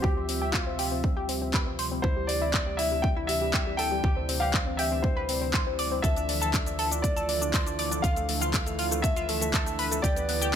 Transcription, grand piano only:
0.02 G4
0.52 F4
2.02 C5
2.27 D5
2.77 E5
3.02 G5
3.27 E5
3.77 G5
4.40 F5
4.77 E5
5.02 C5
6.02 E5
7.02 D5
8.02 F5
9.02 E5
10.02 D5

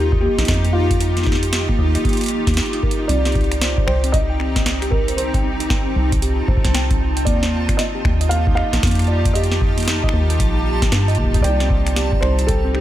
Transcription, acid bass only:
Already playing: D#2
0.38 A#1
0.48 F2
1.79 D#2
2.47 D#2
3.09 C2
3.88 C2
5.96 C2
6.48 G1
6.65 C2
7.27 D#2
8.05 D#2
8.73 A#1
8.83 F2
10.14 D#2
10.40 A#1
10.92 G2
11.18 D#1
11.44 C2
12.22 C2

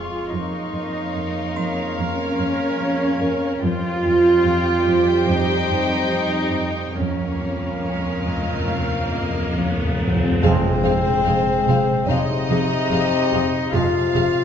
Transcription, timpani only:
6.97 F2
7.05 F2
7.13 F2
7.20 F2
7.28 F2
7.36 F2
7.44 F2
7.52 F2
7.60 F2
7.67 F2
7.74 F2
7.81 F2
7.90 F2
7.98 F2
8.06 F2
8.13 F2
8.22 F2
8.29 F2
8.37 F2
8.45 F2
8.52 F2
8.60 F2
8.68 F2
8.76 F2
8.84 F2
8.92 F2
9.00 F2
9.08 F2
9.15 F2
9.23 F2
9.30 F2
9.38 F2
9.46 F2
9.54 F2
9.62 F2
9.69 F2
9.77 F2
9.85 F2
9.92 F2
10.00 F2
10.08 F2
10.16 F2
10.23 F2
10.31 F2
10.42 F2

